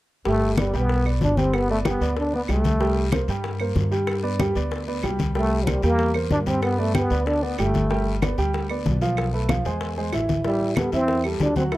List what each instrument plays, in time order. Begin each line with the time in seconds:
0.25 upright bass G1, grand piano G3 G4 G5, trombone A3, high bongo, high conga, long guiro
0.41 high bongo, high conga
0.57 trombone G3, grand piano B3 B4 D5, high bongo, high conga, short guiro, claves
0.73 upright bass B1, grand piano G3 G4 G5, trombone B3, short guiro
0.89 high bongo, high conga, long guiro
1.05 grand piano B3 B4 D5, high bongo, high conga, claves
1.21 upright bass G1, trombone D4, high bongo, low bongo, high conga, short guiro
1.37 grand piano G3 G4 G5, trombone C4, high bongo, high conga, short guiro
1.53 trombone B3, high bongo, high conga, long guiro, claves
1.69 trombone A3, grand piano B3 B4 D5, high bongo, high conga
1.85 grand piano G3 G4 G5, trombone B3, high bongo, high conga, short guiro, claves
2.01 upright bass D2, grand piano B3 B4 D5, high conga, short guiro
2.17 trombone D4, high bongo, high conga, long guiro
2.33 grand piano B3 B4 D5, trombone B3, high bongo, high conga
2.48 upright bass C2, grand piano G3 G4 G5, trombone A3, high bongo, low bongo, high conga, short guiro, claves
2.64 high bongo, high conga, short guiro
2.80 grand piano G3 G4 G5, high bongo, high conga, long guiro
2.96 high bongo, high conga
3.12 grand piano A#3 A#4 C5, high bongo, high conga, short guiro, claves
3.28 upright bass G2, grand piano G3 G4 G5, short guiro
3.44 high bongo, high conga, long guiro
3.60 grand piano A#3 A#4 C5, high bongo, high conga, claves
3.76 upright bass G2, high bongo, low bongo, high conga, short guiro
3.91 grand piano G3 G4 G5, high bongo, short guiro
4.07 high bongo, high conga, long guiro, claves
4.23 grand piano B3 B4 D5, high bongo, high conga
4.40 grand piano G3 G4 G5, high bongo, high conga, short guiro, claves
4.55 upright bass D2, grand piano B3 B4 D5, high conga, short guiro
4.71 high bongo, high conga, long guiro
4.87 grand piano B3 B4 D5, high bongo, high conga
5.03 upright bass C2, grand piano G3 G4 G5, high bongo, low bongo, high conga, short guiro, claves
5.19 high bongo, high conga, short guiro
5.35 grand piano G3 G4 G5, trombone A3, high bongo, high conga, long guiro
5.51 high bongo, high conga
5.63 trombone F3, grand piano A#3 A#4 C5, high bongo, high conga, short guiro, claves
5.68 trombone G3
5.82 upright bass E2, grand piano G3 G4 G5, trombone A#3, short guiro
5.99 high bongo, high conga, long guiro
6.14 grand piano A#3 A#4 C5, high bongo, high conga, claves
6.30 upright bass G2, trombone D4, high bongo, low bongo, high conga, short guiro
6.46 grand piano G3 G4 G5, trombone C4, high bongo, high conga, short guiro
6.62 trombone B3, high bongo, high conga, long guiro, claves
6.78 trombone A3, grand piano B3 B4 D5, high bongo, high conga
6.94 grand piano G3 G4 G5, trombone B3, high bongo, high conga, short guiro, claves
7.10 upright bass D2, grand piano B3 B4 D5, high conga, short guiro
7.26 trombone D4, high bongo, high conga, long guiro
7.42 grand piano B3 B4 D5, trombone B3, high bongo, high conga
7.58 upright bass G1, grand piano G3 G4 G5, trombone A3, high bongo, low bongo, high conga, short guiro, claves
7.74 high bongo, high conga, short guiro
7.90 grand piano G3 G4 G5, high bongo, high conga, long guiro
8.06 high bongo, high conga
8.22 grand piano B3 B4 D5, high bongo, high conga, short guiro, claves
8.38 upright bass D2, grand piano G3 G4 G5, short guiro
8.54 high bongo, high conga, long guiro
8.69 grand piano B3 B4 D5, high bongo, high conga, claves
8.85 upright bass B1, high bongo, low bongo, high conga, short guiro
9.01 grand piano F3 F4 F5, high bongo, short guiro
9.17 high bongo, high conga, long guiro, claves
9.33 grand piano A3 A4 B4, high bongo, high conga
9.49 grand piano F3 F4 F5, high bongo, high conga, short guiro, claves
9.65 upright bass E2, grand piano G#3 G#4 C5, high conga, short guiro
9.81 high bongo, high conga, long guiro
9.96 grand piano G#3 G#4 C5, high bongo, high conga
10.13 upright bass A1, grand piano E3 E4 E5, high bongo, low bongo, high conga, short guiro, claves
10.29 high bongo, high conga, short guiro
10.45 grand piano E3 E4 E5, trombone G3, high bongo, high conga, long guiro
10.60 high bongo, high conga
10.76 grand piano G3 G4 A4, trombone B3, high bongo, high conga, short guiro, claves
10.92 upright bass E2, grand piano E3 E4 E5, trombone C4, short guiro
11.08 high bongo, high conga, long guiro
11.24 grand piano G3 G4 A4, high bongo, high conga, claves
11.40 upright bass D2, trombone D4, high bongo, low bongo, high conga, short guiro
11.56 grand piano F#3 F#4 F#5, trombone C4, high bongo, high conga, short guiro
11.72 trombone E4, high bongo, high conga, long guiro, claves